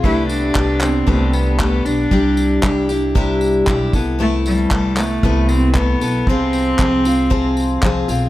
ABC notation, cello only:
X:1
M:4/4
L:1/8
Q:"Swing 16ths" 1/4=116
K:C
V:1 name="Cello"
E D2 C2 B,2 D- | D3 z4 z | A, G,2 A,2 C B,2 | C6 z2 |]